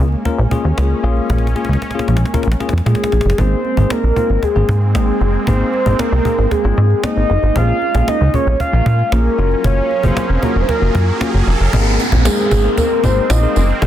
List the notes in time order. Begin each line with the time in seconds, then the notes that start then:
Already playing: G#3 A#3 C#4
0.00 C#2
0.12 cajon slap
0.25 A#3 C#4 F4 A#4, cajon bass, cajon slap
0.38 A#1, cajon slap
0.51 A#3 C#4 F4 G#4, cajon bass
0.64 D#2, cajon slap
0.77 C#2 A#3 C#4 F4 G#4, cajon slap
0.90 cajon slap
1.03 A#1 A#3 C#4 F4 G#4, cajon slap
1.17 cajon slap
1.30 A#1, cajon bass, cajon slap
1.38 cajon slap
1.43 cajon slap
1.47 cajon slap
1.56 A#3 C#4 F4 G#4, cajon slap
1.65 cajon slap
1.69 C#2, cajon slap
1.73 cajon slap
1.82 cajon slap
1.91 A#3 C#4 F4, cajon slap
1.95 G#4, cajon slap
1.99 cajon slap
2.08 A#1, cajon slap
2.17 cajon slap
2.21 cajon slap
2.25 cajon slap
2.33 A#3 C#4 F4 A#4, cajon bass, cajon slap
2.43 A#1, cajon slap
2.48 cajon slap
2.52 cajon slap
2.60 A#3 C#4 F4 G#4, cajon slap
2.69 cajon slap
2.73 F2, cajon slap
2.78 cajon slap
2.86 A#2 A#3 C#4 F4 G#4, cajon slap
2.95 cajon slap
2.99 cajon slap
3.04 cajon slap
3.12 A#1, cajon slap
3.21 cajon slap
3.25 F#1, cajon slap
3.30 cajon slap
3.38 G#1 G#3 A#3 C4 D#4 G#4 C5, cajon bass
3.52 cajon slap
3.65 cajon slap
3.77 G#1 A#3 C4 D#4 G#4, cajon bass
3.90 A#4, cajon slap
4.04 A#1, cajon slap
4.16 A#3 C4 D#4 F4, cajon bass
4.30 G#1, cajon slap
4.43 G#4, cajon bass, cajon slap
4.55 G#1 A#3 C4 D#4 G#4, cajon slap
4.69 G#2, cajon bass
4.82 cajon slap
4.95 G#1 A#3 C4 D#4 G#4, cajon slap
5.08 cajon slap
5.21 F#1, cajon slap
5.34 cajon slap
5.47 G#1 A#3 C4 D#4 G#4 C5, cajon bass
5.61 cajon slap
5.73 cajon slap
5.86 G#1 A#3 C4 D#4 G#4, cajon bass
5.99 A#4, cajon slap
6.12 C2, cajon slap
6.25 A#3 C4 D#4 G#4, cajon bass
6.38 G#1, cajon slap
6.51 G#4, cajon bass, cajon slap
6.64 G#1 A#3 C4 D#4 F4, cajon slap
6.77 G#2, cajon slap
6.90 cajon slap
7.03 A#3 C4 D#4 G#4 D#5, cajon slap
7.16 G#1, cajon slap
7.30 F#1, cajon slap
7.43 G#1, cajon slap
7.56 A#1 A#3 C#4 F4 G#4 F5, cajon bass, riser
7.69 cajon slap
7.82 cajon slap
7.95 A#1 A#3 C#4 F4 G#4, cajon bass
8.08 D#5, cajon slap
8.21 C#2, cajon slap
8.34 A#3 C#4 F4 G#4 C#5, cajon bass
8.47 A#1, cajon slap
8.60 F5, cajon bass, cajon slap
8.73 A#1 A#3 C#4 F4 A#4, cajon slap
8.86 A#2, cajon bass
8.99 cajon slap
9.12 A#1 A#3 C#4 F4 G#4 A#4, cajon slap
9.25 cajon slap
9.38 F#1 F#3 A#3 C#4 F4 F#4 G#4 A#4 F5, cajon slap
9.52 cajon slap
9.64 F#1 C#5, cajon bass
9.78 cajon slap
9.91 cajon slap
10.03 F#1 A#3 C#4 F4 G#4 C5, cajon bass
10.17 cajon slap
10.30 F1
10.43 A#3 C#4 F4 F#4 A#4, cajon bass
10.56 F1
10.62 C5
10.69 A#4, cajon bass, cajon slap
10.81 F#1 A#3 C#4 F4 F#4
10.95 F#2, cajon bass
11.21 A#3 C#4 F4 F#4, cajon slap
11.34 F#1, cajon slap
11.47 F1, cajon slap
11.60 F#1, cajon slap
11.73 G#1 G#3 A#3 C4 D#4 G#4 A#4, cajon bass, downlifter
12.00 cajon slap, tambourine
12.12 A#1, cajon bass
12.25 A#3 C4 D#4 G#4 A#4, cajon slap, tambourine
12.39 cajon slap
12.51 G#1, cajon bass, tambourine
12.64 A#3 C4 D#4 G#4 A#4
12.78 A#4, cajon bass, cajon slap, tambourine
12.91 cajon slap
13.03 G#1 A#3 C4 D#4 G#4 A#4 C5, cajon bass, tambourine
13.17 cajon slap
13.30 A#1 D#5, cajon slap, tambourine
13.42 A#3 C4 D#4 G#4 A#4
13.56 F#1, tambourine
13.69 cajon slap
13.82 G#1 A#3 C4 D#4 G#4 A#4, cajon bass